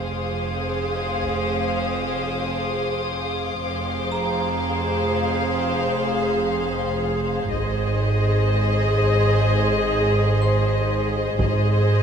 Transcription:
Already playing: F1 F2 G#4 C5 F5 C6 D6 D#6
1.22 taiko
3.64 F1 F2 G#4 C5 F5
3.73 D6
4.12 A#5
7.50 G#1 G#2 G#4 C5 D#5, taiko
8.97 taiko
10.42 C5 C6
11.39 G#1 G#2 G#4 C5 D#5, taiko

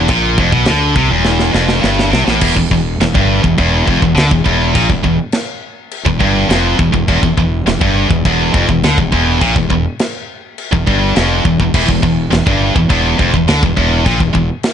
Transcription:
0.08 A#1 A#2, kick, china
0.38 F1 F2, kick
0.52 B1 B2, kick
0.65 D2 D3, snare, china
0.96 C2 C3, kick
1.10 E1 E2
1.25 snare
1.39 snare
1.53 F1 F2, snare
1.69 snare
1.81 G1 G2, snare
1.99 snare
2.11 C2 C3, snare
2.26 A1 A2, snare
2.41 E1 E2, kick, crash, china
2.57 E1 E2, kick
2.71 E1 E2, kick
3.00 E1 E2, snare, china
3.15 G1 G2, kick
3.43 E1 E2, kick
3.58 E1 E2, kick, china
3.86 F1 F2, kick
4.02 E1 E2, kick
4.15 D2 D3, snare, china
4.31 E1 E2, kick
4.45 E1 E2, kick
4.74 A#1 A#2, kick, china
4.89 E1 E2, kick
5.04 E1 E2, kick
5.32 snare, china
5.91 china
6.06 E1 E2, kick
6.20 G1 G2, kick
6.49 F1 F2, snare, china
6.79 E1 E2, kick
6.92 E1 E2, kick
7.08 E1 E2, kick, china
7.22 E1 E2, kick
7.37 E1 E2, kick
7.67 E1 E2, snare, china
7.81 G1 G2, kick
8.09 E1 E2, kick
8.25 E1 E2, kick, china
8.53 F1 F2, kick
8.69 E1 E2, kick
8.82 D2 D3, snare, china
8.98 E1 E2, kick
9.12 E1 E2, kick
9.40 A#1 A#2, kick, china
9.55 E1 E2, kick
9.70 E1 E2, kick
9.99 snare, china
10.58 china
10.72 E1 E2, kick
10.87 G1 G2, kick
11.16 F1 F2, snare, china
11.45 E1 E2, kick
11.60 E1 E2, kick
11.74 E1 E2, kick, crash, china
11.89 E1 E2, kick
12.03 E1 E2, kick
12.31 E1 E2, snare, china
12.47 G1 G2, kick
12.76 E1 E2, kick
12.90 E1 E2, kick, china
13.18 F1 F2, kick
13.34 E1 E2, kick
13.48 D2 D3, snare, china
13.63 E1 E2, kick
13.77 E1 E2, kick
14.04 A#1 A#2, kick, china
14.19 E1 E2, kick
14.34 E1 E2, kick
14.63 snare, china

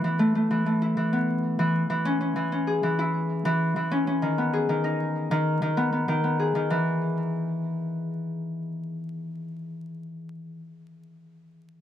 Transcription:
Already playing: A3 B3 C#4 E4
0.04 E3
0.19 A3
0.35 A3
0.51 E3
0.66 A3
0.82 E4
0.97 E3
1.13 B3
1.59 E3
1.90 E3
2.05 C#4
2.21 C#4
2.36 E3
2.52 C#4
2.67 G#4
2.83 E3
2.99 E4
3.45 E3
3.76 E3
3.91 C#4
4.07 C#4
4.22 D#3
4.38 B3
4.53 G#4
4.69 D#3
4.84 D#4
5.31 D#3
5.62 D#3
5.77 B3
5.93 B3
6.08 D#3
6.24 B3
6.39 G#4
6.55 D#3
6.70 E3

